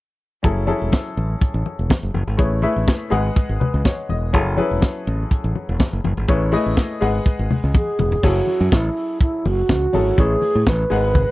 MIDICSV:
0, 0, Header, 1, 5, 480
1, 0, Start_track
1, 0, Tempo, 487013
1, 436, Time_signature, 4, 2, 24, 8
1, 11150, End_track
2, 0, Start_track
2, 0, Title_t, "Grand piano"
2, 0, Program_c, 0, 0
2, 421, Note_on_c, 0, 54, 71
2, 425, Note_on_c, 0, 61, 62
2, 430, Note_on_c, 0, 64, 65
2, 435, Note_on_c, 0, 68, 61
2, 439, Note_on_c, 0, 69, 76
2, 612, Control_c, 0, 64, 127
2, 618, Note_off_c, 0, 54, 0
2, 620, Note_off_c, 0, 61, 0
2, 622, Note_off_c, 0, 64, 0
2, 625, Note_off_c, 0, 68, 0
2, 627, Note_off_c, 0, 69, 0
2, 655, Note_on_c, 0, 54, 73
2, 657, Note_on_c, 0, 61, 71
2, 662, Note_on_c, 0, 64, 75
2, 668, Note_on_c, 0, 68, 76
2, 670, Note_on_c, 0, 69, 86
2, 1413, Note_off_c, 0, 54, 0
2, 1414, Note_off_c, 0, 61, 0
2, 1416, Note_off_c, 0, 64, 0
2, 1419, Note_off_c, 0, 68, 0
2, 1420, Note_off_c, 0, 69, 0
2, 2337, Note_on_c, 0, 57, 72
2, 2343, Note_on_c, 0, 64, 61
2, 2347, Note_on_c, 0, 68, 62
2, 2348, Note_on_c, 0, 71, 66
2, 2354, Note_on_c, 0, 73, 80
2, 2369, Control_c, 0, 64, 0
2, 2518, Control_c, 0, 64, 127
2, 2536, Note_off_c, 0, 57, 0
2, 2539, Note_off_c, 0, 64, 0
2, 2541, Note_off_c, 0, 68, 0
2, 2541, Note_off_c, 0, 71, 0
2, 2545, Note_off_c, 0, 73, 0
2, 2582, Note_on_c, 0, 57, 83
2, 2586, Note_on_c, 0, 64, 78
2, 2589, Note_on_c, 0, 68, 67
2, 2595, Note_on_c, 0, 76, 95
2, 2596, Note_on_c, 0, 71, 83
2, 3045, Note_off_c, 0, 68, 0
2, 3046, Note_off_c, 0, 71, 0
2, 3057, Note_on_c, 0, 56, 88
2, 3060, Note_on_c, 0, 68, 78
2, 3060, Note_on_c, 0, 71, 76
2, 3067, Note_on_c, 0, 75, 73
2, 3069, Note_off_c, 0, 57, 0
2, 3070, Note_on_c, 0, 78, 97
2, 3071, Note_off_c, 0, 64, 0
2, 3075, Note_off_c, 0, 76, 0
2, 3088, Control_c, 0, 64, 0
2, 3279, Control_c, 0, 64, 127
2, 3534, Note_off_c, 0, 71, 0
2, 3549, Note_on_c, 0, 71, 66
2, 3775, Note_off_c, 0, 71, 0
2, 3792, Note_on_c, 0, 73, 69
2, 3837, Note_off_c, 0, 56, 0
2, 3838, Note_off_c, 0, 68, 0
2, 3842, Note_off_c, 0, 75, 0
2, 3843, Note_off_c, 0, 78, 0
2, 4017, Note_off_c, 0, 73, 0
2, 4037, Note_on_c, 0, 75, 67
2, 4259, Note_off_c, 0, 75, 0
2, 4267, Note_on_c, 0, 54, 78
2, 4270, Note_on_c, 0, 61, 65
2, 4272, Note_on_c, 0, 64, 65
2, 4276, Note_on_c, 0, 68, 73
2, 4280, Note_on_c, 0, 69, 84
2, 4289, Control_c, 0, 64, 0
2, 4455, Control_c, 0, 64, 127
2, 4460, Note_off_c, 0, 54, 0
2, 4462, Note_off_c, 0, 61, 0
2, 4463, Note_off_c, 0, 64, 0
2, 4465, Note_off_c, 0, 68, 0
2, 4467, Note_off_c, 0, 69, 0
2, 4500, Note_on_c, 0, 54, 83
2, 4504, Note_on_c, 0, 61, 69
2, 4509, Note_on_c, 0, 64, 75
2, 4513, Note_on_c, 0, 68, 80
2, 4516, Note_on_c, 0, 71, 91
2, 5254, Note_off_c, 0, 54, 0
2, 5256, Note_off_c, 0, 61, 0
2, 5258, Note_off_c, 0, 64, 0
2, 5260, Note_off_c, 0, 68, 0
2, 5261, Note_off_c, 0, 71, 0
2, 6188, Note_on_c, 0, 57, 74
2, 6189, Note_on_c, 0, 64, 72
2, 6189, Note_on_c, 0, 68, 65
2, 6197, Note_on_c, 0, 71, 73
2, 6198, Note_on_c, 0, 73, 86
2, 6208, Control_c, 0, 64, 0
2, 6375, Control_c, 0, 64, 127
2, 6380, Note_off_c, 0, 57, 0
2, 6380, Note_off_c, 0, 68, 0
2, 6381, Note_off_c, 0, 64, 0
2, 6385, Note_off_c, 0, 71, 0
2, 6385, Note_off_c, 0, 73, 0
2, 6426, Note_on_c, 0, 57, 94
2, 6428, Note_on_c, 0, 64, 82
2, 6429, Note_on_c, 0, 68, 83
2, 6437, Note_on_c, 0, 71, 78
2, 6439, Note_on_c, 0, 75, 98
2, 6894, Note_off_c, 0, 68, 0
2, 6900, Note_off_c, 0, 71, 0
2, 6902, Note_off_c, 0, 75, 0
2, 6905, Note_on_c, 0, 56, 82
2, 6909, Note_off_c, 0, 57, 0
2, 6909, Note_on_c, 0, 68, 83
2, 6910, Note_off_c, 0, 64, 0
2, 6915, Note_on_c, 0, 71, 82
2, 6917, Note_on_c, 0, 75, 80
2, 6919, Note_on_c, 0, 78, 91
2, 6925, Control_c, 0, 64, 0
2, 7074, Control_c, 0, 64, 127
2, 7680, Note_off_c, 0, 56, 0
2, 7682, Note_off_c, 0, 68, 0
2, 7685, Note_off_c, 0, 71, 0
2, 7686, Note_off_c, 0, 75, 0
2, 7687, Note_off_c, 0, 78, 0
2, 8109, Note_on_c, 0, 54, 71
2, 8113, Note_on_c, 0, 61, 53
2, 8115, Note_on_c, 0, 64, 61
2, 8121, Note_on_c, 0, 68, 64
2, 8123, Note_on_c, 0, 69, 71
2, 8126, Control_c, 0, 64, 0
2, 8293, Control_c, 0, 64, 127
2, 8858, Note_off_c, 0, 54, 0
2, 8860, Note_off_c, 0, 61, 0
2, 8860, Note_off_c, 0, 64, 0
2, 8863, Note_off_c, 0, 68, 0
2, 8865, Note_off_c, 0, 69, 0
2, 9785, Note_on_c, 0, 54, 74
2, 9793, Note_on_c, 0, 61, 67
2, 9799, Note_on_c, 0, 64, 60
2, 9801, Note_on_c, 0, 68, 61
2, 9804, Note_on_c, 0, 69, 87
2, 9978, Note_off_c, 0, 54, 0
2, 9982, Note_off_c, 0, 61, 0
2, 9985, Note_off_c, 0, 64, 0
2, 9986, Note_off_c, 0, 68, 0
2, 9988, Note_off_c, 0, 69, 0
2, 10026, Note_on_c, 0, 57, 64
2, 10030, Note_on_c, 0, 68, 62
2, 10031, Note_on_c, 0, 64, 60
2, 10037, Note_on_c, 0, 71, 66
2, 10041, Note_on_c, 0, 73, 81
2, 10046, Control_c, 0, 64, 0
2, 10208, Control_c, 0, 64, 127
2, 10728, Note_off_c, 0, 68, 0
2, 10743, Note_on_c, 0, 56, 82
2, 10743, Note_on_c, 0, 68, 75
2, 10749, Note_off_c, 0, 57, 0
2, 10751, Note_off_c, 0, 64, 0
2, 10754, Note_off_c, 0, 71, 0
2, 10755, Note_on_c, 0, 70, 59
2, 10756, Note_off_c, 0, 73, 0
2, 10756, Note_on_c, 0, 75, 73
2, 10759, Note_on_c, 0, 78, 94
2, 10764, Control_c, 0, 64, 0
2, 10807, Note_on_c, 0, 71, 73
2, 10814, Note_off_c, 0, 70, 0
2, 10953, Control_c, 0, 64, 127
2, 11150, Note_off_c, 0, 56, 0
2, 11150, Note_off_c, 0, 68, 0
2, 11150, Note_off_c, 0, 71, 0
2, 11150, Note_off_c, 0, 75, 0
2, 11150, Note_off_c, 0, 78, 0
2, 11150, End_track
3, 0, Start_track
3, 0, Title_t, "Alto flute"
3, 0, Program_c, 1, 73
3, 7657, Note_on_c, 1, 68, 88
3, 8137, Note_on_c, 1, 66, 94
3, 8151, Note_off_c, 1, 68, 0
3, 8623, Note_on_c, 1, 64, 81
3, 8638, Note_off_c, 1, 66, 0
3, 9079, Note_off_c, 1, 64, 0
3, 9085, Note_on_c, 1, 64, 86
3, 9332, Note_on_c, 1, 66, 107
3, 9347, Note_off_c, 1, 64, 0
3, 10054, Note_on_c, 1, 68, 103
3, 10069, Note_off_c, 1, 66, 0
3, 10532, Note_on_c, 1, 71, 94
3, 10547, Note_off_c, 1, 68, 0
3, 11150, Note_off_c, 1, 71, 0
3, 11150, End_track
4, 0, Start_track
4, 0, Title_t, "Fingered electric bass"
4, 0, Program_c, 2, 33
4, 439, Note_on_c, 2, 30, 83
4, 688, Note_off_c, 2, 30, 0
4, 804, Note_on_c, 2, 28, 67
4, 881, Note_off_c, 2, 28, 0
4, 1156, Note_on_c, 2, 33, 82
4, 1319, Note_off_c, 2, 33, 0
4, 1519, Note_on_c, 2, 33, 80
4, 1597, Note_off_c, 2, 33, 0
4, 1764, Note_on_c, 2, 28, 80
4, 1841, Note_off_c, 2, 28, 0
4, 2000, Note_on_c, 2, 30, 78
4, 2078, Note_off_c, 2, 30, 0
4, 2111, Note_on_c, 2, 30, 84
4, 2199, Note_off_c, 2, 30, 0
4, 2241, Note_on_c, 2, 32, 81
4, 2318, Note_off_c, 2, 32, 0
4, 2358, Note_on_c, 2, 33, 85
4, 2607, Note_off_c, 2, 33, 0
4, 2724, Note_on_c, 2, 33, 65
4, 2800, Note_off_c, 2, 33, 0
4, 3074, Note_on_c, 2, 32, 97
4, 3238, Note_off_c, 2, 32, 0
4, 3442, Note_on_c, 2, 32, 75
4, 3519, Note_off_c, 2, 32, 0
4, 3685, Note_on_c, 2, 37, 79
4, 3761, Note_off_c, 2, 37, 0
4, 4040, Note_on_c, 2, 28, 73
4, 4276, Note_off_c, 2, 28, 0
4, 4276, Note_on_c, 2, 30, 93
4, 4525, Note_off_c, 2, 30, 0
4, 4644, Note_on_c, 2, 28, 70
4, 4720, Note_off_c, 2, 28, 0
4, 4999, Note_on_c, 2, 33, 94
4, 5160, Note_off_c, 2, 33, 0
4, 5363, Note_on_c, 2, 33, 83
4, 5439, Note_off_c, 2, 33, 0
4, 5607, Note_on_c, 2, 28, 83
4, 5682, Note_off_c, 2, 28, 0
4, 5845, Note_on_c, 2, 30, 82
4, 5920, Note_off_c, 2, 30, 0
4, 5956, Note_on_c, 2, 30, 94
4, 6042, Note_off_c, 2, 30, 0
4, 6084, Note_on_c, 2, 32, 86
4, 6159, Note_off_c, 2, 32, 0
4, 6198, Note_on_c, 2, 33, 105
4, 6446, Note_off_c, 2, 33, 0
4, 6566, Note_on_c, 2, 33, 70
4, 6641, Note_off_c, 2, 33, 0
4, 6919, Note_on_c, 2, 32, 100
4, 7080, Note_off_c, 2, 32, 0
4, 7285, Note_on_c, 2, 32, 84
4, 7360, Note_off_c, 2, 32, 0
4, 7527, Note_on_c, 2, 37, 88
4, 7601, Note_off_c, 2, 37, 0
4, 7879, Note_on_c, 2, 28, 83
4, 8040, Note_off_c, 2, 28, 0
4, 8117, Note_on_c, 2, 30, 100
4, 8279, Note_off_c, 2, 30, 0
4, 8482, Note_on_c, 2, 42, 92
4, 8558, Note_off_c, 2, 42, 0
4, 8596, Note_on_c, 2, 33, 87
4, 8758, Note_off_c, 2, 33, 0
4, 9318, Note_on_c, 2, 30, 83
4, 9479, Note_off_c, 2, 30, 0
4, 9554, Note_on_c, 2, 37, 85
4, 9717, Note_off_c, 2, 37, 0
4, 9803, Note_on_c, 2, 32, 78
4, 9962, Note_off_c, 2, 32, 0
4, 10038, Note_on_c, 2, 33, 96
4, 10199, Note_off_c, 2, 33, 0
4, 10402, Note_on_c, 2, 45, 83
4, 10478, Note_off_c, 2, 45, 0
4, 10518, Note_on_c, 2, 33, 91
4, 10679, Note_off_c, 2, 33, 0
4, 10755, Note_on_c, 2, 32, 102
4, 11080, Note_off_c, 2, 32, 0
4, 11150, End_track
5, 0, Start_track
5, 0, Title_t, "Drums"
5, 434, Note_on_c, 9, 42, 66
5, 434, Note_on_c, 9, 62, 46
5, 435, Note_on_c, 9, 36, 93
5, 532, Note_off_c, 9, 42, 0
5, 533, Note_off_c, 9, 62, 0
5, 534, Note_off_c, 9, 36, 0
5, 662, Note_on_c, 9, 62, 46
5, 761, Note_off_c, 9, 62, 0
5, 910, Note_on_c, 9, 63, 66
5, 914, Note_on_c, 9, 42, 64
5, 916, Note_on_c, 9, 36, 101
5, 919, Note_on_c, 9, 38, 108
5, 1009, Note_off_c, 9, 63, 0
5, 1013, Note_off_c, 9, 42, 0
5, 1014, Note_off_c, 9, 36, 0
5, 1017, Note_off_c, 9, 38, 0
5, 1389, Note_on_c, 9, 62, 30
5, 1394, Note_on_c, 9, 36, 110
5, 1394, Note_on_c, 9, 42, 57
5, 1487, Note_off_c, 9, 62, 0
5, 1493, Note_off_c, 9, 36, 0
5, 1493, Note_off_c, 9, 42, 0
5, 1636, Note_on_c, 9, 62, 55
5, 1734, Note_off_c, 9, 62, 0
5, 1869, Note_on_c, 9, 63, 69
5, 1876, Note_on_c, 9, 36, 95
5, 1877, Note_on_c, 9, 42, 63
5, 1882, Note_on_c, 9, 38, 110
5, 1967, Note_off_c, 9, 63, 0
5, 1974, Note_off_c, 9, 36, 0
5, 1975, Note_off_c, 9, 42, 0
5, 1980, Note_off_c, 9, 38, 0
5, 2112, Note_on_c, 9, 63, 69
5, 2210, Note_off_c, 9, 63, 0
5, 2353, Note_on_c, 9, 42, 59
5, 2354, Note_on_c, 9, 36, 101
5, 2355, Note_on_c, 9, 62, 50
5, 2451, Note_off_c, 9, 42, 0
5, 2453, Note_off_c, 9, 36, 0
5, 2454, Note_off_c, 9, 62, 0
5, 2586, Note_on_c, 9, 62, 47
5, 2684, Note_off_c, 9, 62, 0
5, 2833, Note_on_c, 9, 63, 71
5, 2836, Note_on_c, 9, 36, 95
5, 2837, Note_on_c, 9, 42, 57
5, 2842, Note_on_c, 9, 38, 97
5, 2932, Note_off_c, 9, 63, 0
5, 2934, Note_off_c, 9, 36, 0
5, 2935, Note_off_c, 9, 42, 0
5, 2940, Note_off_c, 9, 38, 0
5, 3311, Note_on_c, 9, 62, 31
5, 3315, Note_on_c, 9, 36, 103
5, 3318, Note_on_c, 9, 42, 66
5, 3410, Note_off_c, 9, 62, 0
5, 3413, Note_off_c, 9, 36, 0
5, 3416, Note_off_c, 9, 42, 0
5, 3560, Note_on_c, 9, 62, 62
5, 3560, Note_on_c, 9, 64, 85
5, 3659, Note_off_c, 9, 62, 0
5, 3659, Note_off_c, 9, 64, 0
5, 3790, Note_on_c, 9, 63, 65
5, 3794, Note_on_c, 9, 42, 55
5, 3796, Note_on_c, 9, 36, 96
5, 3799, Note_on_c, 9, 38, 96
5, 3889, Note_off_c, 9, 63, 0
5, 3892, Note_off_c, 9, 42, 0
5, 3895, Note_off_c, 9, 36, 0
5, 3897, Note_off_c, 9, 38, 0
5, 4033, Note_on_c, 9, 63, 65
5, 4132, Note_off_c, 9, 63, 0
5, 4271, Note_on_c, 9, 62, 52
5, 4272, Note_on_c, 9, 42, 56
5, 4275, Note_on_c, 9, 36, 100
5, 4370, Note_off_c, 9, 62, 0
5, 4371, Note_off_c, 9, 42, 0
5, 4374, Note_off_c, 9, 36, 0
5, 4507, Note_on_c, 9, 62, 51
5, 4606, Note_off_c, 9, 62, 0
5, 4750, Note_on_c, 9, 42, 55
5, 4750, Note_on_c, 9, 63, 69
5, 4754, Note_on_c, 9, 36, 113
5, 4755, Note_on_c, 9, 38, 93
5, 4848, Note_off_c, 9, 42, 0
5, 4848, Note_off_c, 9, 63, 0
5, 4853, Note_off_c, 9, 36, 0
5, 4853, Note_off_c, 9, 38, 0
5, 5234, Note_on_c, 9, 36, 94
5, 5236, Note_on_c, 9, 42, 68
5, 5333, Note_off_c, 9, 36, 0
5, 5335, Note_off_c, 9, 42, 0
5, 5475, Note_on_c, 9, 62, 58
5, 5574, Note_off_c, 9, 62, 0
5, 5711, Note_on_c, 9, 63, 72
5, 5715, Note_on_c, 9, 36, 115
5, 5715, Note_on_c, 9, 42, 58
5, 5719, Note_on_c, 9, 38, 104
5, 5809, Note_off_c, 9, 63, 0
5, 5813, Note_off_c, 9, 42, 0
5, 5814, Note_off_c, 9, 36, 0
5, 5818, Note_off_c, 9, 38, 0
5, 5956, Note_on_c, 9, 63, 73
5, 6055, Note_off_c, 9, 63, 0
5, 6195, Note_on_c, 9, 36, 96
5, 6197, Note_on_c, 9, 42, 63
5, 6199, Note_on_c, 9, 62, 43
5, 6293, Note_off_c, 9, 36, 0
5, 6296, Note_off_c, 9, 42, 0
5, 6297, Note_off_c, 9, 62, 0
5, 6432, Note_on_c, 9, 62, 49
5, 6435, Note_on_c, 9, 46, 60
5, 6531, Note_off_c, 9, 62, 0
5, 6534, Note_off_c, 9, 46, 0
5, 6671, Note_on_c, 9, 42, 63
5, 6672, Note_on_c, 9, 63, 65
5, 6674, Note_on_c, 9, 36, 104
5, 6676, Note_on_c, 9, 38, 100
5, 6770, Note_off_c, 9, 42, 0
5, 6771, Note_off_c, 9, 63, 0
5, 6772, Note_off_c, 9, 36, 0
5, 6775, Note_off_c, 9, 38, 0
5, 6915, Note_on_c, 9, 46, 58
5, 7014, Note_off_c, 9, 46, 0
5, 7154, Note_on_c, 9, 36, 107
5, 7157, Note_on_c, 9, 42, 65
5, 7253, Note_off_c, 9, 36, 0
5, 7255, Note_off_c, 9, 42, 0
5, 7399, Note_on_c, 9, 62, 59
5, 7399, Note_on_c, 9, 64, 84
5, 7402, Note_on_c, 9, 46, 49
5, 7497, Note_off_c, 9, 62, 0
5, 7497, Note_off_c, 9, 64, 0
5, 7501, Note_off_c, 9, 46, 0
5, 7629, Note_on_c, 9, 63, 65
5, 7635, Note_on_c, 9, 36, 119
5, 7637, Note_on_c, 9, 48, 55
5, 7728, Note_off_c, 9, 63, 0
5, 7733, Note_off_c, 9, 36, 0
5, 7736, Note_off_c, 9, 48, 0
5, 7874, Note_on_c, 9, 45, 87
5, 7877, Note_on_c, 9, 63, 75
5, 7973, Note_off_c, 9, 45, 0
5, 7975, Note_off_c, 9, 63, 0
5, 8004, Note_on_c, 9, 43, 78
5, 8102, Note_off_c, 9, 43, 0
5, 8115, Note_on_c, 9, 36, 100
5, 8118, Note_on_c, 9, 49, 80
5, 8120, Note_on_c, 9, 62, 50
5, 8214, Note_off_c, 9, 36, 0
5, 8217, Note_off_c, 9, 49, 0
5, 8219, Note_off_c, 9, 62, 0
5, 8351, Note_on_c, 9, 62, 48
5, 8354, Note_on_c, 9, 46, 59
5, 8449, Note_off_c, 9, 62, 0
5, 8452, Note_off_c, 9, 46, 0
5, 8595, Note_on_c, 9, 36, 112
5, 8596, Note_on_c, 9, 42, 58
5, 8599, Note_on_c, 9, 63, 73
5, 8600, Note_on_c, 9, 38, 96
5, 8694, Note_off_c, 9, 36, 0
5, 8694, Note_off_c, 9, 42, 0
5, 8698, Note_off_c, 9, 63, 0
5, 8699, Note_off_c, 9, 38, 0
5, 8837, Note_on_c, 9, 46, 57
5, 8935, Note_off_c, 9, 46, 0
5, 9072, Note_on_c, 9, 42, 74
5, 9073, Note_on_c, 9, 36, 116
5, 9170, Note_off_c, 9, 42, 0
5, 9171, Note_off_c, 9, 36, 0
5, 9317, Note_on_c, 9, 46, 57
5, 9322, Note_on_c, 9, 62, 61
5, 9416, Note_off_c, 9, 46, 0
5, 9420, Note_off_c, 9, 62, 0
5, 9550, Note_on_c, 9, 42, 59
5, 9553, Note_on_c, 9, 36, 124
5, 9555, Note_on_c, 9, 38, 103
5, 9561, Note_on_c, 9, 63, 68
5, 9649, Note_off_c, 9, 42, 0
5, 9652, Note_off_c, 9, 36, 0
5, 9653, Note_off_c, 9, 38, 0
5, 9660, Note_off_c, 9, 63, 0
5, 9787, Note_on_c, 9, 46, 80
5, 9795, Note_on_c, 9, 63, 78
5, 9886, Note_off_c, 9, 46, 0
5, 9894, Note_off_c, 9, 63, 0
5, 10033, Note_on_c, 9, 36, 109
5, 10034, Note_on_c, 9, 42, 66
5, 10034, Note_on_c, 9, 62, 51
5, 10132, Note_off_c, 9, 36, 0
5, 10132, Note_off_c, 9, 42, 0
5, 10133, Note_off_c, 9, 62, 0
5, 10268, Note_on_c, 9, 62, 47
5, 10273, Note_on_c, 9, 46, 64
5, 10366, Note_off_c, 9, 62, 0
5, 10372, Note_off_c, 9, 46, 0
5, 10509, Note_on_c, 9, 42, 66
5, 10512, Note_on_c, 9, 36, 98
5, 10514, Note_on_c, 9, 38, 105
5, 10518, Note_on_c, 9, 63, 73
5, 10608, Note_off_c, 9, 42, 0
5, 10611, Note_off_c, 9, 36, 0
5, 10613, Note_off_c, 9, 38, 0
5, 10616, Note_off_c, 9, 63, 0
5, 10749, Note_on_c, 9, 46, 63
5, 10848, Note_off_c, 9, 46, 0
5, 10988, Note_on_c, 9, 62, 35
5, 10988, Note_on_c, 9, 64, 71
5, 10989, Note_on_c, 9, 42, 74
5, 10990, Note_on_c, 9, 36, 112
5, 11087, Note_off_c, 9, 42, 0
5, 11087, Note_off_c, 9, 62, 0
5, 11087, Note_off_c, 9, 64, 0
5, 11088, Note_off_c, 9, 36, 0
5, 11150, End_track
0, 0, End_of_file